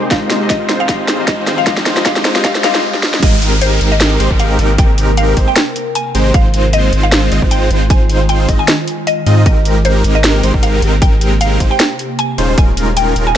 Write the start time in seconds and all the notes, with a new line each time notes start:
Already playing: G3 G#3 C4 G4 A#4 C5 D#5, riser
0.10 G#2 D#3 G#3 C4 D#4 F4 G4 C5 D#5 F5, kick, snare, closed hi-hat
0.30 snare, closed hi-hat
0.39 G#3 F4 G4 D#5
0.50 D#5, kick, snare, closed hi-hat
0.69 G#3 C4 D#4 F4 C5, snare, closed hi-hat
0.80 F5
0.88 G#3 F4 G4 D#5 F5, kick, snare, closed hi-hat
1.08 snare, closed hi-hat
1.17 G#3 F4 G4
1.21 D#5
1.28 D#5, kick, snare, closed hi-hat
1.47 G#3 C4 D#4 F4 C5, snare, closed hi-hat
1.58 F5
1.66 G#3 F4 G4 D#5 F5, kick, snare, closed hi-hat
1.77 snare
1.86 snare, closed hi-hat
1.95 G#3 F4 G4, snare
1.99 D#5
2.05 G#3 C4 D#4 F4 G4 C5 D#5 F5, kick, snare, closed hi-hat
2.16 snare
2.25 snare, closed hi-hat
2.34 G#3 F4 G4 D#5, snare
2.44 G#3 F4 G4 D#5 F5, kick, snare, closed hi-hat
2.55 snare
2.63 G#3 C4 D#4 F4 G4 C5 D#5 F5, snare, closed hi-hat
2.75 snare
2.94 snare
3.03 snare
3.14 snare
3.22 G#1 C3 G#3 A#3 C4 D#4 G4 A#4 D#5, kick, closed hi-hat, crash, downlifter
3.42 closed hi-hat
3.61 C5, closed hi-hat
3.81 G#1 G#3 C4 D#4 G4 A#4, closed hi-hat
3.92 D#5
4.01 snare, closed hi-hat
4.20 G#1 G#3 C4 D#4 G4 C5, closed hi-hat
4.30 G#1 G#3 C4 D#4 G4 A#4, kick
4.40 F5, closed hi-hat
4.59 G#1 G#3 C4 D#4 G4 A#4, closed hi-hat
4.78 G5, kick, closed hi-hat
4.98 closed hi-hat
5.17 F5, closed hi-hat
5.37 G#1 G#3 C4 D#4 G4 C5, kick, closed hi-hat
5.48 G5
5.56 snare, closed hi-hat
5.76 closed hi-hat
5.95 G#5, closed hi-hat
6.15 G#1 G#3 C4 D#4 G4 C5, closed hi-hat
6.34 G#1 D#3 G#3 F4 F5, kick, closed hi-hat
6.54 closed hi-hat
6.73 D#5, closed hi-hat
6.93 G#1 G#3 C4 D#4 F4 C5, closed hi-hat
7.03 F5
7.12 snare, closed hi-hat
7.32 G#1 G#3 C4 D#4 F4 D#5, closed hi-hat
7.42 G#1 G#3 C4 D#4 F4 C5, kick
7.51 G5, closed hi-hat
7.71 G#1 G#3 C4 D#4 F4 C5, closed hi-hat
7.90 G#5, kick, closed hi-hat
8.10 closed hi-hat
8.29 G5, closed hi-hat
8.48 G#1 G#3 C4 D#4 F4 D#5, kick, closed hi-hat
8.59 G#5
8.68 snare, closed hi-hat
8.88 closed hi-hat
9.07 D#5, closed hi-hat
9.26 G#2 G#3 C4 D#4 F4 D#5, closed hi-hat
9.46 G#1 C3 G#3 A#3 D#4 G4 A#4 D#5, kick, closed hi-hat
9.65 closed hi-hat
9.85 C5, closed hi-hat
10.04 G#1 G#3 C4 D#4 G4 A#4, closed hi-hat
10.15 D#5
10.24 snare, closed hi-hat
10.43 G#1 G#3 C4 D#4 G4 C5, closed hi-hat
10.54 G#1 G#3 C4 D#4 G4 A#4, kick
10.63 F5, closed hi-hat
10.82 G#1 G#3 C4 D#4 G4 A#4, closed hi-hat
11.02 G5, kick, closed hi-hat
11.21 closed hi-hat
11.41 F5, closed hi-hat
11.60 G#1 G#3 C4 D#4 G4 C5, kick, closed hi-hat
11.71 G5
11.80 snare, closed hi-hat
11.99 closed hi-hat
12.19 G#5, closed hi-hat
12.38 D#1 C#3 G#3 C#4 D#4 F4 C5, closed hi-hat
12.58 D#1 G#3 D#4 A#4 G#5, kick, closed hi-hat
12.77 closed hi-hat
12.97 G5, closed hi-hat
13.16 D#1 G#3 C#4 D#4 F4 A#4, closed hi-hat
13.27 G#5